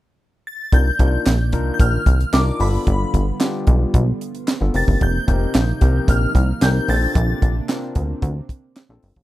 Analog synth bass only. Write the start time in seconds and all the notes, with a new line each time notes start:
0.73 C2
1.00 C2
1.26 A#1
1.53 C2
1.80 A#1
2.06 C2
2.33 C2
2.60 G1
2.87 G1
3.14 G1
3.67 B1
3.94 B1
4.61 G1
4.75 F1
4.88 G1
5.01 F1
5.28 F1
5.55 A#1
5.82 C2
6.08 A#1
6.35 C2
6.62 C2
6.88 A#1
7.15 A#1
7.42 A#1
7.96 D2
8.22 D2
8.89 A#1
9.03 G1
9.17 A1